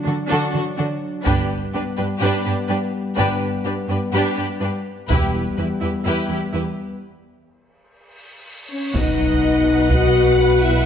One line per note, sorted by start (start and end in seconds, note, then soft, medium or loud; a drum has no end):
0.00 1.22 F#3 soft
0.00 1.22 D4 soft
0.04 0.14 D3 soft
0.04 0.12 D4 soft
0.04 0.15 F#4 soft
0.04 0.15 A4 soft
0.27 0.39 D3 medium
0.27 0.51 D4 medium
0.27 0.53 F#4 soft
0.27 0.53 A4 medium
0.52 0.63 D3 soft
0.52 0.60 D4 soft
0.52 0.62 F#4 soft
0.52 0.62 A4 soft
0.77 0.87 D3 soft
0.77 0.85 D4 soft
0.77 0.85 F#4 soft
0.77 0.86 A4 soft
1.25 1.48 G1 medium
1.25 1.34 G2 medium
1.25 4.91 G3 medium
1.25 4.91 B3 medium
1.25 1.48 D4 medium
1.25 1.48 G4 medium
1.25 1.48 B4 medium
1.25 taiko soft
1.74 1.83 G2 soft
1.74 1.82 D4 soft
1.74 1.82 G4 soft
1.74 1.82 B4 soft
1.97 2.06 G2 soft
1.97 2.06 D4 soft
1.97 2.05 G4 soft
1.97 2.05 B4 soft
2.19 2.30 G2 medium
2.19 2.44 D4 medium
2.19 2.43 G4 medium
2.19 2.43 B4 medium
2.45 2.55 G2 soft
2.45 2.54 D4 soft
2.45 2.53 G4 soft
2.45 2.53 B4 soft
2.68 2.77 G2 soft
2.68 2.77 D4 soft
2.68 2.77 G4 soft
2.68 2.76 B4 medium
3.16 3.40 G1 medium
3.16 3.26 G2 medium
3.16 3.40 D4 medium
3.16 3.40 G4 medium
3.16 3.39 B4 medium
3.64 3.73 G2 soft
3.64 3.74 D4 soft
3.64 3.72 G4 soft
3.64 3.73 B4 soft
3.89 3.97 G2 soft
3.89 3.98 D4 soft
3.89 3.97 G4 soft
3.89 3.98 B4 soft
4.13 4.21 G2 medium
4.13 4.36 D4 medium
4.13 4.36 G4 medium
4.13 4.35 B4 medium
4.37 4.45 G2 soft
4.37 4.45 D4 soft
4.37 4.45 G4 soft
4.37 4.46 B4 soft
4.60 4.68 G2 soft
4.60 4.69 D4 soft
4.60 4.71 G4 soft
4.60 4.68 B4 soft
5.08 5.32 E1 medium
5.08 5.17 E2 medium
5.08 6.97 G3 medium
5.08 6.98 B3 soft
5.08 5.33 E4 medium
5.08 5.33 G4 medium
5.08 5.32 B4 medium
5.08 taiko medium
5.57 5.65 E2 soft
5.57 5.67 E4 soft
5.57 5.67 G4 soft
5.57 5.66 B4 soft
5.81 5.90 E2 soft
5.81 5.89 E4 soft
5.81 5.91 G4 soft
5.81 5.90 B4 soft
6.05 6.13 E2 medium
6.05 6.28 E4 medium
6.05 6.29 G4 soft
6.05 6.28 B4 medium
6.29 6.37 E2 soft
6.29 6.38 E4 soft
6.29 6.40 G4 soft
6.29 6.37 B4 soft
6.53 6.62 E2 soft
6.53 6.62 E4 soft
6.53 6.63 G4 soft
6.53 6.61 B4 soft
7.02 cymbal swell soft
8.69 8.92 C#4 soft
8.69 8.92 C#5 soft
8.94 10.86 B1 soft
8.94 10.86 B2 soft
8.94 9.90 D#4 medium
8.94 10.86 B4 soft
8.94 9.90 D#5 soft
8.94 10.86 F#5 soft
8.94 taiko medium
8.94 impact medium
9.89 10.62 F#4 medium
9.89 10.35 D#5 medium
9.89 10.61 F#5 medium
9.89 taiko medium
10.37 10.84 B4 soft
10.61 10.86 E4 medium
10.61 10.85 E5 soft